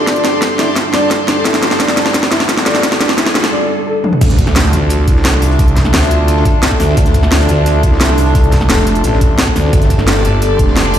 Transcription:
0.00 3.48 G3 medium
0.00 3.48 D4 medium
0.00 3.52 G4 medium
0.00 3.48 A4 medium
0.00 3.52 D5 medium
0.00 3.52 A5 medium
0.00 3.52 C6 medium
0.00 riser medium
0.07 0.18 D5 loud
0.07 kick loud
0.07 snare medium
0.07 closed hi-hat medium
0.16 closed hi-hat soft
0.25 snare medium
0.25 closed hi-hat medium
0.42 0.46 D4 loud
0.42 kick loud
0.42 snare medium
0.42 closed hi-hat medium
0.59 0.64 E4 loud
0.59 snare medium
0.59 closed hi-hat medium
0.76 0.84 F4 medium
0.76 kick loud
0.76 snare medium
0.76 closed hi-hat loud
0.94 1.05 D5 loud
0.94 snare medium
0.94 closed hi-hat medium
1.11 kick loud
1.11 snare medium
1.11 closed hi-hat medium
1.28 1.33 D4 loud
1.28 snare medium
1.28 closed hi-hat medium
1.45 1.50 E4 loud
1.45 kick loud
1.45 snare medium
1.45 closed hi-hat loud
1.54 snare medium
1.54 closed hi-hat soft
1.62 1.70 F4 medium
1.62 snare medium
1.62 closed hi-hat medium
1.71 snare medium
1.80 1.91 D5 loud
1.80 snare loud
1.80 closed hi-hat medium
1.88 snare medium
1.97 snare loud
1.97 closed hi-hat medium
2.06 snare medium
2.14 2.19 D4 loud
2.14 kick loud
2.14 snare loud
2.14 closed hi-hat loud
2.23 snare medium
2.31 2.36 E4 loud
2.31 snare loud
2.31 closed hi-hat medium
2.40 snare medium
2.49 2.56 F4 medium
2.49 kick loud
2.49 snare loud
2.49 closed hi-hat medium
2.57 snare medium
2.66 2.77 D5 loud
2.66 snare loud
2.66 closed hi-hat medium
2.75 snare medium
2.83 kick loud
2.83 snare loud
2.83 closed hi-hat loud
2.92 snare medium
2.92 closed hi-hat soft
3.01 3.05 D4 loud
3.01 snare loud
3.01 closed hi-hat medium
3.09 snare medium
3.18 3.22 E4 loud
3.18 kick loud
3.18 snare loud
3.18 closed hi-hat loud
3.26 snare medium
3.35 3.42 F4 medium
3.35 snare loud
3.35 closed hi-hat medium
3.44 snare loud
3.44 closed hi-hat soft
3.52 3.63 D5 loud
3.87 3.94 A4 medium
4.04 4.11 D4 medium
4.04 high tom medium
4.13 mid tom medium
4.21 4.72 D2 medium
4.21 10.99 D4 medium
4.21 10.48 D4 medium
4.21 10.99 A4 medium
4.21 9.69 E5 medium
4.21 kick loud
4.21 closed hi-hat medium
4.21 closed hi-hat loud
4.21 crash loud
4.21 impact medium
4.30 snare soft
4.30 closed hi-hat soft
4.38 kick medium
4.38 closed hi-hat medium
4.47 10.99 A4 medium
4.47 snare soft
4.55 10.97 F4 medium
4.55 snare loud
4.55 closed hi-hat loud
4.55 closed hi-hat medium
4.73 5.06 D2 loud
4.73 closed hi-hat medium
4.90 closed hi-hat medium
4.90 closed hi-hat loud
5.08 5.92 C2 loud
5.08 kick loud
5.08 closed hi-hat medium
5.16 snare soft
5.24 snare loud
5.24 closed hi-hat loud
5.24 open hi-hat medium
5.33 snare soft
5.42 closed hi-hat medium
5.42 open hi-hat medium
5.51 closed hi-hat soft
5.59 kick loud
5.59 closed hi-hat medium
5.68 closed hi-hat soft
5.76 kick medium
5.76 snare soft
5.76 closed hi-hat medium
5.85 snare soft
5.94 6.44 D2 loud
5.94 snare loud
5.94 closed hi-hat medium
6.11 closed hi-hat medium
6.28 closed hi-hat medium
6.28 closed hi-hat loud
6.36 snare soft
6.45 kick loud
6.45 closed hi-hat medium
6.63 snare loud
6.63 closed hi-hat medium
6.63 closed hi-hat loud
6.71 kick medium
6.71 snare soft
6.80 6.96 D2 loud
6.80 snare soft
6.80 closed hi-hat medium
6.80 open hi-hat medium
6.89 snare soft
6.97 7.48 D2 loud
6.97 kick loud
6.97 closed hi-hat medium
7.05 snare soft
7.05 closed hi-hat soft
7.14 kick medium
7.14 closed hi-hat medium
7.23 snare soft
7.32 snare loud
7.32 closed hi-hat medium
7.49 7.82 D2 loud
7.49 closed hi-hat medium
7.66 closed hi-hat medium
7.83 8.68 C2 loud
7.83 kick loud
7.83 closed hi-hat medium
7.92 snare soft
8.01 snare loud
8.01 closed hi-hat medium
8.01 open hi-hat medium
8.09 snare soft
8.18 closed hi-hat medium
8.18 open hi-hat medium
8.26 closed hi-hat soft
8.35 kick loud
8.35 closed hi-hat medium
8.35 closed hi-hat loud
8.44 closed hi-hat soft
8.52 kick medium
8.52 snare soft
8.52 closed hi-hat medium
8.61 snare soft
8.70 9.03 F1 loud
8.70 snare loud
8.70 closed hi-hat medium
8.87 closed hi-hat medium
8.95 closed hi-hat soft
9.04 9.37 A1 loud
9.04 closed hi-hat medium
9.13 snare soft
9.21 kick loud
9.21 closed hi-hat medium
9.38 snare loud
9.38 closed hi-hat medium
9.38 closed hi-hat loud
9.47 kick medium
9.47 snare soft
9.56 9.72 D2 loud
9.56 snare soft
9.56 closed hi-hat medium
9.56 open hi-hat medium
9.65 snare soft
9.73 10.23 G1 medium
9.73 10.99 G3 medium
9.73 10.99 G4 medium
9.73 kick loud
9.73 closed hi-hat medium
9.82 10.99 A5 medium
9.82 snare soft
9.82 closed hi-hat soft
9.90 kick medium
9.90 closed hi-hat medium
9.99 snare soft
10.05 10.99 D5 medium
10.05 snare loud
10.05 closed hi-hat medium
10.25 10.58 G1 loud
10.25 closed hi-hat medium
10.42 closed hi-hat medium
10.56 10.99 F1 loud
10.56 10.99 C6 medium
10.56 kick loud
10.56 closed hi-hat medium
10.68 snare soft
10.76 snare loud
10.76 closed hi-hat medium
10.76 open hi-hat medium
10.85 snare soft
10.94 closed hi-hat medium
10.94 open hi-hat medium

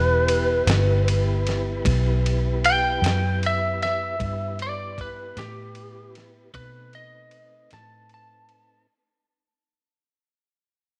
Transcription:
0.00 0.64 E1 medium
0.00 4.16 B3 medium
0.00 4.16 E4 medium
0.00 4.16 G4 medium
0.00 1.81 B4 medium
0.00 4.16 B4 medium
0.28 ride medium
0.67 1.81 G1 loud
0.67 snare loud
0.67 ride medium
1.08 ride medium
1.47 snare soft
1.47 ride soft
1.85 2.99 B1 loud
1.85 kick medium
1.85 ride medium
2.26 ride medium
2.65 3.40 G5 medium
2.65 ride medium
3.02 4.16 F#2 loud
3.02 ride medium
3.06 snare loud
3.43 3.82 E5 medium
3.43 ride medium
3.82 4.58 E5 loud
3.82 snare soft
3.82 ride medium
4.19 5.34 G2 medium
4.19 6.52 B3 medium
4.19 6.52 E4 medium
4.19 6.52 G4 medium
4.19 6.52 B4 medium
4.19 kick loud
4.19 ride medium
4.59 4.99 D5 medium
4.59 ride medium
4.98 5.37 B4 medium
4.98 kick medium
4.98 ride medium
5.37 6.51 A2 medium
5.37 6.14 G4 medium
5.37 snare loud
5.37 ride medium
5.75 ride medium
6.15 snare soft
6.15 ride medium
6.54 7.68 B2 medium
6.54 8.87 A3 medium
6.54 8.86 C4 medium
6.54 8.87 D#4 medium
6.54 6.93 B4 loud
6.54 8.87 B4 medium
6.54 kick medium
6.54 ride medium
6.93 7.70 D#5 medium
6.93 ride medium
7.31 ride medium
7.71 8.86 A2 medium
7.71 8.10 A5 medium
7.71 snare loud
7.71 ride medium
8.09 ride medium
8.14 8.88 A5 loud
8.49 ride medium

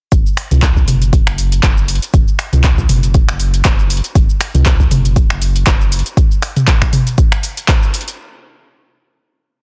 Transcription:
0.12 0.24 F#1 loud
0.12 kick loud
0.12 closed hi-hat medium
0.12 shaker medium
0.26 shaker soft
0.37 finger snap medium
0.37 open hi-hat loud
0.37 shaker medium
0.51 0.85 C#2 medium
0.51 closed hi-hat soft
0.51 mid tom medium
0.51 shaker soft
0.62 kick loud
0.62 clap medium
0.62 closed hi-hat medium
0.62 shaker medium
0.76 kick medium
0.76 shaker soft
0.87 1.23 F#1 medium
0.87 open hi-hat loud
0.87 mid tom medium
0.87 shaker medium
1.02 closed hi-hat soft
1.02 shaker soft
1.13 kick loud
1.13 closed hi-hat medium
1.13 shaker medium
1.27 1.60 F#1 medium
1.27 finger snap medium
1.27 shaker soft
1.38 open hi-hat medium
1.38 shaker medium
1.52 closed hi-hat medium
1.52 shaker soft
1.63 1.99 F#1 medium
1.63 kick loud
1.63 clap loud
1.63 closed hi-hat soft
1.63 shaker medium
1.77 shaker soft
1.88 open hi-hat medium
1.88 shaker loud
1.95 closed hi-hat medium
2.02 closed hi-hat soft
2.02 shaker soft
2.14 2.25 F#1 loud
2.14 kick loud
2.14 closed hi-hat medium
2.14 shaker medium
2.28 shaker soft
2.39 finger snap medium
2.39 open hi-hat medium
2.39 shaker loud
2.53 2.86 C#2 medium
2.53 closed hi-hat soft
2.53 mid tom medium
2.53 shaker soft
2.64 kick loud
2.64 clap medium
2.64 closed hi-hat medium
2.64 shaker medium
2.78 kick medium
2.78 shaker soft
2.89 3.25 F#1 medium
2.89 open hi-hat medium
2.89 mid tom medium
2.89 shaker loud
3.03 closed hi-hat soft
3.03 shaker soft
3.14 kick loud
3.14 closed hi-hat medium
3.14 shaker medium
3.28 3.62 F#1 medium
3.28 finger snap loud
3.28 shaker soft
3.40 open hi-hat medium
3.40 shaker medium
3.54 closed hi-hat medium
3.54 shaker soft
3.65 4.01 F#1 medium
3.65 kick loud
3.65 clap loud
3.65 open hi-hat medium
3.65 shaker medium
3.79 shaker soft
3.90 open hi-hat medium
3.90 shaker loud
3.97 closed hi-hat medium
4.04 closed hi-hat soft
4.04 shaker soft
4.15 4.27 F#1 loud
4.15 kick loud
4.15 closed hi-hat medium
4.15 shaker medium
4.30 shaker soft
4.41 finger snap medium
4.41 open hi-hat medium
4.41 shaker loud
4.54 4.88 C#2 medium
4.54 closed hi-hat soft
4.54 mid tom medium
4.54 shaker soft
4.66 kick loud
4.66 clap loud
4.66 closed hi-hat medium
4.66 shaker medium
4.80 kick medium
4.80 shaker soft
4.91 5.26 F#1 medium
4.91 open hi-hat medium
4.91 mid tom medium
4.91 shaker loud
5.05 closed hi-hat soft
5.05 shaker soft
5.16 kick loud
5.16 closed hi-hat medium
5.16 shaker medium
5.30 5.64 F#1 medium
5.30 finger snap loud
5.30 shaker soft
5.42 open hi-hat medium
5.42 shaker loud
5.56 closed hi-hat medium
5.56 shaker soft
5.67 6.02 F#1 medium
5.67 kick loud
5.67 clap loud
5.67 closed hi-hat soft
5.67 shaker medium
5.81 shaker soft
5.92 open hi-hat medium
5.92 shaker loud
5.99 closed hi-hat medium
6.06 closed hi-hat soft
6.06 shaker soft
6.17 kick loud
6.17 closed hi-hat medium
6.17 shaker medium
6.31 shaker soft
6.42 finger snap medium
6.42 open hi-hat medium
6.42 shaker loud
6.56 closed hi-hat soft
6.56 mid tom medium
6.56 shaker soft
6.68 kick loud
6.68 clap loud
6.68 closed hi-hat medium
6.68 shaker medium
6.82 finger snap medium
6.82 kick medium
6.82 shaker soft
6.93 open hi-hat medium
6.93 mid tom medium
6.93 shaker loud
7.07 closed hi-hat soft
7.07 shaker soft
7.18 kick loud
7.18 closed hi-hat medium
7.18 shaker medium
7.32 finger snap medium
7.32 shaker soft
7.43 open hi-hat medium
7.43 shaker loud
7.57 closed hi-hat medium
7.57 shaker soft
7.68 kick loud
7.68 clap loud
7.68 open hi-hat medium
7.68 shaker medium
7.83 shaker soft
7.94 open hi-hat medium
7.94 shaker loud
8.01 closed hi-hat medium
8.08 closed hi-hat soft
8.08 shaker soft

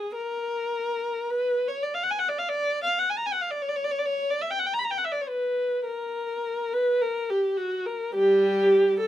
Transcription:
0.00 0.11 G#4 medium
0.15 1.28 A#4 medium
1.30 1.66 B4 medium
1.68 1.82 C#5 medium
1.83 1.93 D5 soft
1.94 2.03 F5 medium
2.03 2.11 F#5 medium
2.11 2.19 G#5 medium
2.19 2.28 F#5 medium
2.29 2.38 D5 medium
2.38 2.49 F5 soft
2.49 2.83 D5 medium
2.84 2.98 F5 medium
2.99 3.09 F#5 medium
3.10 3.18 G#5 medium
3.18 3.25 A#5 soft
3.26 3.33 G#5 medium
3.33 3.42 F#5 soft
3.41 3.51 F5 soft
3.51 3.62 D5 soft
3.62 3.70 C#5 medium
3.69 3.77 D5 medium
3.76 3.84 C#5 medium
3.84 3.92 D5 medium
3.91 3.99 C#5 medium
3.99 4.06 D5 medium
4.06 4.29 C#5 medium
4.30 4.42 D5 medium
4.42 4.51 E5 medium
4.51 4.60 G5 medium
4.59 4.67 F#5 medium
4.67 4.73 G5 medium
4.74 4.80 A#5 medium
4.79 4.85 B5 medium
4.84 4.91 A#5 medium
4.91 4.98 G5 medium
4.98 5.05 F#5 medium
5.05 5.13 E5 medium
5.12 5.21 D5 medium
5.21 5.30 C#5 medium
5.29 5.86 B4 medium
5.85 6.71 A#4 medium
6.74 7.02 B4 medium
7.01 7.30 A#4 medium
7.30 7.59 G4 medium
7.57 7.87 F#4 medium
7.86 8.16 A#4 medium
8.15 8.96 G3 medium
8.15 8.98 G4 medium
9.00 9.07 A4 medium

